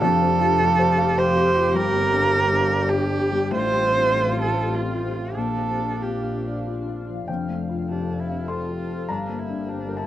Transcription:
Already playing: ambient pad G4 F5
0.01 double bass F1, grand piano F2, ambient pad C4, viola G4, cello A4
0.21 grand piano C4
0.40 grand piano F4
0.59 grand piano G4
0.79 grand piano C5
0.98 grand piano F5
1.18 grand piano C5, cello C5
1.36 grand piano G4
1.56 grand piano F4
1.74 double bass G1, grand piano G2, ambient pad D4 G5, cello A#4
1.94 grand piano G3
2.13 grand piano D4
2.32 grand piano G4
2.52 grand piano D4
2.71 grand piano D5
2.89 cello G4, grand piano G4
3.10 grand piano D4
3.31 grand piano G3
3.51 double bass A1, grand piano A2, ambient pad C4 G4 F5, viola F4, cello C5
3.72 grand piano G3
3.92 grand piano C4
4.12 grand piano F4
4.33 grand piano G4
4.42 cello A4
4.53 grand piano C5
4.74 cello F4, grand piano G4
4.94 grand piano F4
5.15 grand piano C4
5.35 double bass A#1, grand piano A#2, ambient pad D4 F4, viola D4, cello A4
5.57 grand piano F3
5.79 grand piano D4
6.01 grand piano F4, cello G4
6.22 grand piano D4
6.44 grand piano D5
6.66 grand piano F4
6.87 grand piano D4
7.09 grand piano F3
7.27 double bass F1, grand piano F2 G5, ambient pad C4 A4 F5
7.49 grand piano A3
7.69 grand piano F4
7.89 cello D4, grand piano G4
8.09 grand piano A4
8.19 cello E4
8.29 grand piano F5
8.48 cello F4, grand piano A4 C6
8.70 grand piano G4
8.89 grand piano F4
9.08 double bass G1, grand piano G2 A#5, ambient pad D4 G4 G5, cello D4
9.29 grand piano A#3
9.38 cello E4
9.49 grand piano D4
9.68 cello D4, grand piano G4
9.88 grand piano A#4
9.97 cello E4, grand piano A5

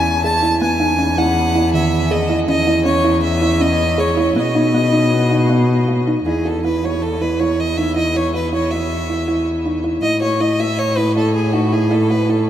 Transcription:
Already playing: cello E2, kalimba C#4, violin G#5
0.24 kalimba G#4, violin A5
0.43 kalimba E4
0.61 cello E2, kalimba B3, violin G#5
0.80 kalimba D#4
0.98 kalimba C#4
1.18 kalimba E4, violin F#5
1.55 kalimba E4
1.73 kalimba D#3, violin E5
2.11 kalimba G#4, violin D#5
2.29 kalimba E4
2.48 cello E2, kalimba C#4, violin D#5
2.67 kalimba E4
2.84 kalimba C#4, violin C#5
3.05 kalimba E4
3.23 violin E5
3.42 kalimba E4
3.60 kalimba C#4, violin D#5
3.98 kalimba G#4, violin C#5
4.17 kalimba E4
4.36 cello B2, kalimba B3, violin D#5
4.55 kalimba D#4
4.74 kalimba B3
4.92 kalimba D#4
5.31 kalimba D#4
5.49 kalimba B3
5.88 kalimba F#4
6.07 kalimba D#4
6.26 cello E2, kalimba E4, violin G#4
6.45 kalimba F#4, violin A4
6.65 kalimba E4, violin B4
6.84 kalimba F#4, violin C#5
7.03 violin A4
7.21 kalimba E4, violin B4
7.40 kalimba E4, violin C#5
7.59 violin D#5
7.77 kalimba D#4, violin E5
7.96 kalimba E4, violin D#5
8.15 kalimba E4, violin C#5
8.34 kalimba F#4, violin B4
8.53 kalimba E4, violin C#5
8.71 kalimba F#4, violin E5
9.10 kalimba E4
9.28 kalimba E4
9.66 kalimba D#4
9.84 kalimba E4
10.02 cello A2, kalimba E4, violin D#5
10.22 kalimba F#4, violin C#5
10.41 kalimba E4, violin D#5
10.60 kalimba F#4, violin E5
10.79 violin C#5
10.97 kalimba E4, violin B4
11.16 kalimba E4, violin A4
11.35 violin G#4
11.53 kalimba D#4, violin F#4
11.72 kalimba E4, violin G#4
11.91 kalimba E4, violin A4
12.10 kalimba F#4, violin B4
12.30 kalimba E4, violin A4

